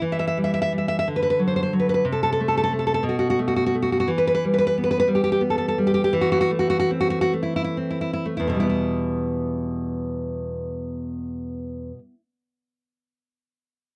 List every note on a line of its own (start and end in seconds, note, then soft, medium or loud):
0.02 1.03 E3 medium
0.12 0.18 E5 loud
0.19 0.26 E5 loud
0.27 0.37 E5 loud
0.37 0.71 G3 medium
0.44 0.52 E5 loud
0.54 0.60 E5 loud
0.62 0.72 E5 loud
0.72 1.03 G3 medium
0.78 0.87 E5 medium
0.88 0.98 E5 loud
0.99 1.07 E5 loud
1.08 2.03 D3 medium
1.16 1.21 B4 medium
1.23 1.29 B4 loud
1.30 1.39 B4 loud
1.39 1.72 F#3 medium
1.48 1.55 C5 medium
1.56 1.61 C5 medium
1.63 1.72 C5 loud
1.73 2.02 F#3 medium
1.79 1.88 B4 medium
1.89 1.93 B4 loud
1.94 2.04 B4 loud
2.05 3.00 C3 medium
2.12 2.21 A4 medium
2.23 2.31 A4 loud
2.32 2.39 A4 loud
2.40 2.71 A3 medium
2.48 2.55 A4 medium
2.57 2.62 A4 loud
2.64 2.71 A4 loud
2.72 3.01 A3 medium
2.79 2.86 A4 medium
2.87 2.93 A4 loud
2.94 3.03 A4 loud
3.03 4.06 B2 medium
3.09 3.18 F#4 medium
3.19 3.28 F#4 loud
3.30 3.38 F#4 loud
3.39 3.74 A3 medium
3.48 3.55 F#4 medium
3.56 3.65 F#4 loud
3.66 3.75 F#4 loud
3.75 4.07 A3 medium
3.82 3.91 F#4 medium
3.92 3.99 F#4 medium
4.00 4.09 F#4 loud
4.08 6.08 E3 medium
4.18 4.26 B4 loud
4.27 4.33 B4 loud
4.35 4.43 B4 loud
4.44 5.06 G3 medium
4.54 4.57 B4 loud
4.58 4.66 B4 loud
4.67 4.76 B4 loud
4.78 5.40 B3 medium
4.84 4.90 B4 loud
4.91 4.98 B4 loud
5.00 5.08 B4 loud
5.08 5.77 G3 medium
5.15 5.23 G4 loud
5.24 5.31 G4 loud
5.32 5.41 G4 loud
5.41 6.12 B3 medium
5.50 5.57 A4 medium
5.58 5.67 A4 loud
5.68 5.77 A4 loud
5.78 6.14 G3 medium
5.87 5.93 G4 loud
5.94 6.03 G4 loud
6.04 6.13 G4 loud
6.13 8.68 E3 loud
6.21 6.31 F#4 loud
6.32 6.39 F#4 loud
6.41 6.50 F#4 loud
6.51 7.32 A3 medium
6.59 6.69 F#4 loud
6.70 6.78 F#4 loud
6.79 6.89 F#4 loud
6.91 7.76 C4 medium
7.00 7.09 F#4 loud
7.10 7.20 F#4 loud
7.21 7.32 F#4 loud
7.33 8.24 A3 medium
7.43 7.54 E4 medium
7.56 7.63 E4 loud
7.64 7.76 E4 loud
7.77 8.62 C4 medium
7.90 8.00 E4 medium
8.01 8.12 E4 medium
8.13 8.25 E4 loud
8.26 8.54 A3 medium
8.37 11.90 E2 medium
8.37 8.48 E4 medium
8.47 11.98 B2 medium
8.47 8.59 E4 medium
8.55 12.05 G3 medium
8.60 12.13 B3 medium
8.60 8.68 E4 medium
8.69 12.20 E4 medium